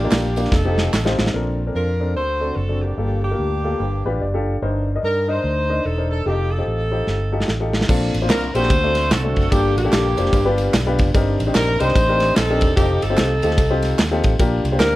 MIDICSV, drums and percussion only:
0, 0, Header, 1, 2, 480
1, 0, Start_track
1, 0, Key_signature, -2, "major"
1, 0, Tempo, 407886
1, 1577, Time_signature, 4, 2, 24, 8
1, 17601, End_track
2, 0, Start_track
2, 0, Title_t, "Drums"
2, 134, Note_on_c, 9, 39, 91
2, 134, Note_on_c, 9, 54, 88
2, 143, Note_on_c, 9, 53, 74
2, 144, Note_on_c, 9, 38, 115
2, 252, Note_off_c, 9, 39, 0
2, 252, Note_off_c, 9, 54, 0
2, 261, Note_off_c, 9, 53, 0
2, 262, Note_off_c, 9, 38, 0
2, 428, Note_on_c, 9, 54, 62
2, 439, Note_on_c, 9, 53, 57
2, 526, Note_on_c, 9, 38, 35
2, 546, Note_off_c, 9, 54, 0
2, 557, Note_off_c, 9, 53, 0
2, 614, Note_on_c, 9, 36, 114
2, 615, Note_on_c, 9, 54, 78
2, 620, Note_off_c, 9, 38, 0
2, 620, Note_on_c, 9, 38, 59
2, 731, Note_off_c, 9, 36, 0
2, 733, Note_off_c, 9, 54, 0
2, 738, Note_off_c, 9, 38, 0
2, 918, Note_on_c, 9, 38, 76
2, 928, Note_on_c, 9, 54, 58
2, 1035, Note_off_c, 9, 38, 0
2, 1046, Note_off_c, 9, 54, 0
2, 1101, Note_on_c, 9, 38, 92
2, 1102, Note_on_c, 9, 39, 93
2, 1102, Note_on_c, 9, 54, 95
2, 1218, Note_off_c, 9, 38, 0
2, 1220, Note_off_c, 9, 39, 0
2, 1220, Note_off_c, 9, 54, 0
2, 1248, Note_on_c, 9, 38, 78
2, 1366, Note_off_c, 9, 38, 0
2, 1396, Note_on_c, 9, 38, 101
2, 1402, Note_on_c, 9, 54, 51
2, 1488, Note_off_c, 9, 38, 0
2, 1488, Note_on_c, 9, 38, 87
2, 1520, Note_off_c, 9, 54, 0
2, 1606, Note_off_c, 9, 38, 0
2, 8323, Note_on_c, 9, 38, 49
2, 8441, Note_off_c, 9, 38, 0
2, 8714, Note_on_c, 9, 38, 59
2, 8803, Note_off_c, 9, 38, 0
2, 8803, Note_on_c, 9, 38, 77
2, 8921, Note_off_c, 9, 38, 0
2, 9102, Note_on_c, 9, 38, 78
2, 9193, Note_off_c, 9, 38, 0
2, 9193, Note_on_c, 9, 38, 73
2, 9284, Note_on_c, 9, 49, 101
2, 9286, Note_on_c, 9, 36, 106
2, 9292, Note_on_c, 9, 54, 89
2, 9311, Note_off_c, 9, 38, 0
2, 9402, Note_off_c, 9, 49, 0
2, 9404, Note_off_c, 9, 36, 0
2, 9409, Note_off_c, 9, 54, 0
2, 9585, Note_on_c, 9, 53, 60
2, 9586, Note_on_c, 9, 54, 48
2, 9702, Note_off_c, 9, 53, 0
2, 9704, Note_off_c, 9, 54, 0
2, 9765, Note_on_c, 9, 39, 89
2, 9765, Note_on_c, 9, 54, 94
2, 9767, Note_on_c, 9, 53, 76
2, 9768, Note_on_c, 9, 38, 121
2, 9883, Note_off_c, 9, 39, 0
2, 9883, Note_off_c, 9, 54, 0
2, 9885, Note_off_c, 9, 53, 0
2, 9886, Note_off_c, 9, 38, 0
2, 10060, Note_on_c, 9, 54, 65
2, 10064, Note_on_c, 9, 53, 60
2, 10156, Note_on_c, 9, 38, 35
2, 10178, Note_off_c, 9, 54, 0
2, 10182, Note_off_c, 9, 53, 0
2, 10241, Note_on_c, 9, 36, 115
2, 10246, Note_on_c, 9, 53, 80
2, 10248, Note_on_c, 9, 54, 75
2, 10274, Note_off_c, 9, 38, 0
2, 10359, Note_off_c, 9, 36, 0
2, 10364, Note_off_c, 9, 53, 0
2, 10366, Note_off_c, 9, 54, 0
2, 10534, Note_on_c, 9, 53, 65
2, 10540, Note_on_c, 9, 38, 36
2, 10560, Note_on_c, 9, 54, 62
2, 10651, Note_off_c, 9, 53, 0
2, 10658, Note_off_c, 9, 38, 0
2, 10678, Note_off_c, 9, 54, 0
2, 10722, Note_on_c, 9, 53, 80
2, 10725, Note_on_c, 9, 38, 119
2, 10730, Note_on_c, 9, 39, 98
2, 10730, Note_on_c, 9, 54, 98
2, 10839, Note_off_c, 9, 53, 0
2, 10842, Note_off_c, 9, 38, 0
2, 10848, Note_off_c, 9, 39, 0
2, 10848, Note_off_c, 9, 54, 0
2, 11019, Note_on_c, 9, 53, 69
2, 11025, Note_on_c, 9, 36, 91
2, 11030, Note_on_c, 9, 54, 51
2, 11136, Note_off_c, 9, 53, 0
2, 11143, Note_off_c, 9, 36, 0
2, 11148, Note_off_c, 9, 54, 0
2, 11204, Note_on_c, 9, 36, 113
2, 11206, Note_on_c, 9, 53, 80
2, 11207, Note_on_c, 9, 54, 82
2, 11322, Note_off_c, 9, 36, 0
2, 11323, Note_off_c, 9, 53, 0
2, 11325, Note_off_c, 9, 54, 0
2, 11506, Note_on_c, 9, 53, 58
2, 11506, Note_on_c, 9, 54, 52
2, 11624, Note_off_c, 9, 53, 0
2, 11624, Note_off_c, 9, 54, 0
2, 11680, Note_on_c, 9, 39, 90
2, 11680, Note_on_c, 9, 54, 88
2, 11683, Note_on_c, 9, 53, 72
2, 11684, Note_on_c, 9, 38, 122
2, 11798, Note_off_c, 9, 39, 0
2, 11798, Note_off_c, 9, 54, 0
2, 11801, Note_off_c, 9, 38, 0
2, 11801, Note_off_c, 9, 53, 0
2, 11971, Note_on_c, 9, 54, 65
2, 11977, Note_on_c, 9, 53, 62
2, 12071, Note_on_c, 9, 38, 35
2, 12089, Note_off_c, 9, 54, 0
2, 12094, Note_off_c, 9, 53, 0
2, 12152, Note_on_c, 9, 54, 79
2, 12155, Note_on_c, 9, 36, 108
2, 12161, Note_on_c, 9, 53, 82
2, 12188, Note_off_c, 9, 38, 0
2, 12269, Note_off_c, 9, 54, 0
2, 12273, Note_off_c, 9, 36, 0
2, 12278, Note_off_c, 9, 53, 0
2, 12450, Note_on_c, 9, 53, 60
2, 12466, Note_on_c, 9, 54, 59
2, 12568, Note_off_c, 9, 53, 0
2, 12584, Note_off_c, 9, 54, 0
2, 12634, Note_on_c, 9, 53, 84
2, 12637, Note_on_c, 9, 38, 124
2, 12639, Note_on_c, 9, 39, 100
2, 12639, Note_on_c, 9, 54, 92
2, 12752, Note_off_c, 9, 53, 0
2, 12755, Note_off_c, 9, 38, 0
2, 12757, Note_off_c, 9, 39, 0
2, 12757, Note_off_c, 9, 54, 0
2, 12929, Note_on_c, 9, 53, 71
2, 12939, Note_on_c, 9, 36, 93
2, 12941, Note_on_c, 9, 54, 55
2, 13046, Note_off_c, 9, 53, 0
2, 13057, Note_off_c, 9, 36, 0
2, 13059, Note_off_c, 9, 54, 0
2, 13117, Note_on_c, 9, 36, 108
2, 13117, Note_on_c, 9, 53, 79
2, 13121, Note_on_c, 9, 54, 90
2, 13235, Note_off_c, 9, 36, 0
2, 13235, Note_off_c, 9, 53, 0
2, 13239, Note_off_c, 9, 54, 0
2, 13414, Note_on_c, 9, 54, 48
2, 13418, Note_on_c, 9, 53, 59
2, 13531, Note_off_c, 9, 54, 0
2, 13536, Note_off_c, 9, 53, 0
2, 13592, Note_on_c, 9, 39, 99
2, 13592, Note_on_c, 9, 54, 91
2, 13594, Note_on_c, 9, 53, 74
2, 13595, Note_on_c, 9, 38, 120
2, 13709, Note_off_c, 9, 39, 0
2, 13709, Note_off_c, 9, 54, 0
2, 13712, Note_off_c, 9, 38, 0
2, 13712, Note_off_c, 9, 53, 0
2, 13884, Note_on_c, 9, 54, 67
2, 13890, Note_on_c, 9, 53, 62
2, 13980, Note_on_c, 9, 38, 36
2, 14002, Note_off_c, 9, 54, 0
2, 14008, Note_off_c, 9, 53, 0
2, 14068, Note_on_c, 9, 36, 112
2, 14069, Note_on_c, 9, 54, 83
2, 14071, Note_on_c, 9, 53, 79
2, 14098, Note_off_c, 9, 38, 0
2, 14186, Note_off_c, 9, 36, 0
2, 14187, Note_off_c, 9, 54, 0
2, 14189, Note_off_c, 9, 53, 0
2, 14358, Note_on_c, 9, 53, 64
2, 14365, Note_on_c, 9, 38, 36
2, 14388, Note_on_c, 9, 54, 55
2, 14476, Note_off_c, 9, 53, 0
2, 14482, Note_off_c, 9, 38, 0
2, 14506, Note_off_c, 9, 54, 0
2, 14547, Note_on_c, 9, 53, 80
2, 14550, Note_on_c, 9, 38, 127
2, 14561, Note_on_c, 9, 39, 94
2, 14561, Note_on_c, 9, 54, 97
2, 14665, Note_off_c, 9, 53, 0
2, 14668, Note_off_c, 9, 38, 0
2, 14678, Note_off_c, 9, 39, 0
2, 14678, Note_off_c, 9, 54, 0
2, 14838, Note_on_c, 9, 53, 72
2, 14851, Note_on_c, 9, 36, 92
2, 14865, Note_on_c, 9, 54, 51
2, 14955, Note_off_c, 9, 53, 0
2, 14969, Note_off_c, 9, 36, 0
2, 14982, Note_off_c, 9, 54, 0
2, 15029, Note_on_c, 9, 53, 79
2, 15030, Note_on_c, 9, 36, 104
2, 15039, Note_on_c, 9, 54, 86
2, 15146, Note_off_c, 9, 53, 0
2, 15148, Note_off_c, 9, 36, 0
2, 15157, Note_off_c, 9, 54, 0
2, 15326, Note_on_c, 9, 53, 58
2, 15331, Note_on_c, 9, 54, 50
2, 15444, Note_off_c, 9, 53, 0
2, 15449, Note_off_c, 9, 54, 0
2, 15503, Note_on_c, 9, 39, 89
2, 15503, Note_on_c, 9, 54, 89
2, 15509, Note_on_c, 9, 53, 71
2, 15510, Note_on_c, 9, 38, 119
2, 15621, Note_off_c, 9, 39, 0
2, 15621, Note_off_c, 9, 54, 0
2, 15627, Note_off_c, 9, 38, 0
2, 15627, Note_off_c, 9, 53, 0
2, 15797, Note_on_c, 9, 54, 65
2, 15804, Note_on_c, 9, 53, 59
2, 15893, Note_on_c, 9, 38, 34
2, 15915, Note_off_c, 9, 54, 0
2, 15921, Note_off_c, 9, 53, 0
2, 15976, Note_on_c, 9, 54, 80
2, 15979, Note_on_c, 9, 36, 112
2, 15981, Note_on_c, 9, 53, 87
2, 16011, Note_off_c, 9, 38, 0
2, 16093, Note_off_c, 9, 54, 0
2, 16097, Note_off_c, 9, 36, 0
2, 16099, Note_off_c, 9, 53, 0
2, 16268, Note_on_c, 9, 53, 63
2, 16275, Note_on_c, 9, 38, 36
2, 16294, Note_on_c, 9, 54, 58
2, 16386, Note_off_c, 9, 53, 0
2, 16393, Note_off_c, 9, 38, 0
2, 16411, Note_off_c, 9, 54, 0
2, 16460, Note_on_c, 9, 53, 85
2, 16462, Note_on_c, 9, 39, 97
2, 16462, Note_on_c, 9, 54, 93
2, 16463, Note_on_c, 9, 38, 127
2, 16577, Note_off_c, 9, 53, 0
2, 16580, Note_off_c, 9, 38, 0
2, 16580, Note_off_c, 9, 39, 0
2, 16580, Note_off_c, 9, 54, 0
2, 16753, Note_on_c, 9, 53, 68
2, 16760, Note_on_c, 9, 54, 52
2, 16762, Note_on_c, 9, 36, 93
2, 16870, Note_off_c, 9, 53, 0
2, 16878, Note_off_c, 9, 54, 0
2, 16880, Note_off_c, 9, 36, 0
2, 16939, Note_on_c, 9, 54, 85
2, 16940, Note_on_c, 9, 36, 113
2, 16940, Note_on_c, 9, 53, 79
2, 17057, Note_off_c, 9, 54, 0
2, 17058, Note_off_c, 9, 36, 0
2, 17058, Note_off_c, 9, 53, 0
2, 17238, Note_on_c, 9, 54, 49
2, 17239, Note_on_c, 9, 53, 58
2, 17355, Note_off_c, 9, 54, 0
2, 17356, Note_off_c, 9, 53, 0
2, 17413, Note_on_c, 9, 39, 91
2, 17413, Note_on_c, 9, 54, 91
2, 17420, Note_on_c, 9, 53, 72
2, 17421, Note_on_c, 9, 38, 115
2, 17531, Note_off_c, 9, 39, 0
2, 17531, Note_off_c, 9, 54, 0
2, 17538, Note_off_c, 9, 53, 0
2, 17539, Note_off_c, 9, 38, 0
2, 17601, End_track
0, 0, End_of_file